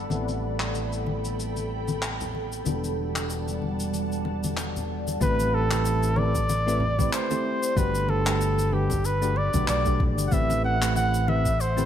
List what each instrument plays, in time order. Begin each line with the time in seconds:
0.09 fretless electric bass A1, synth keys G3 B3 C4 E4 A4, ambient pad A4 G5 B5, high conga, shaker
0.28 muted conga, shaker
0.60 clap, shaker
0.74 muted conga, shaker
0.93 shaker
1.06 muted conga, high conga
1.25 shaker
1.40 shaker
1.56 muted conga, shaker
1.88 muted conga, high conga, shaker
2.02 clap, shaker
2.21 low conga, shaker
2.35 muted conga
2.52 shaker
2.64 fretless electric bass E1, synth keys G3 B3 D4 F#4 A4, ambient pad G3 D5 F#5 A5, muted conga, high conga, shaker
2.84 shaker
3.16 clap, muted conga, shaker
3.30 shaker
3.48 muted conga, shaker
3.62 high conga
3.80 shaker
3.94 muted conga, shaker
4.12 shaker
4.25 muted conga
4.44 high conga, shaker
4.57 clap, shaker
4.76 muted conga, low conga, shaker
5.08 muted conga, shaker
5.20 fretless electric bass A1, synth keys A3 C4 E4 G4 B4, flugelhorn B4, kick, high conga, shaker
5.40 muted conga, shaker
5.54 flugelhorn A4
5.71 synth keys A3 C4 E4 G4 B4, clap, muted conga, shaker
5.85 shaker
6.03 shaker
6.16 synth keys A3 C4 E4 G4 B4, flugelhorn D5, muted conga, high conga
6.35 kick, shaker
6.49 muted conga, shaker
6.66 synth keys A3 C4 E4 G4 B4, shaker
6.80 low conga
6.99 synth keys A3 C4 E4 G4 B4, kick, muted conga, high conga, shaker
7.13 flugelhorn C5, clap, shaker
7.30 synth keys A3 C4 E4 G4 C5, muted conga, shaker
7.63 shaker
7.76 fretless electric bass G1, synth keys A3 D4 F#4 G4 B4, flugelhorn B4, kick, muted conga, high conga, shaker
7.95 shaker
8.08 flugelhorn A4, muted conga
8.26 synth keys A3 D4 F#4 G4 B4, clap, shaker
8.41 shaker
8.59 muted conga, shaker
8.71 synth keys A3 D4 F#4 G4 B4, flugelhorn G4, high conga
8.90 kick, muted conga, low conga, shaker
9.05 flugelhorn B4, shaker
9.22 synth keys A3 D4 F#4 G4 B4, shaker
9.36 flugelhorn D5, muted conga
9.54 fretless electric bass B1, synth keys A3 D4 F#4 G4 B4, kick, high conga, shaker
9.68 fretless electric bass B1, flugelhorn D5, clap, muted conga, shaker
9.85 synth keys A3 D4 F#4 G4 D5, kick, shaker
10.00 kick, low conga
10.18 fretless electric bass G1, muted conga, shaker
10.27 flugelhorn F#5
10.31 fretless electric bass A1, synth keys A3 C4 E4 G4 B4, flugelhorn E5, kick, high conga, shaker
10.50 muted conga, shaker
10.65 flugelhorn F#5
10.81 synth keys A3 C4 E4 G4 B4, clap, shaker
10.96 flugelhorn F#5, muted conga, shaker
11.14 shaker
11.27 synth keys A3 C4 E4 G4 B4, flugelhorn E5, muted conga, high conga
11.46 kick, shaker
11.60 flugelhorn C5, shaker
11.77 synth keys A3 C4 E4 G4 B4, muted conga, shaker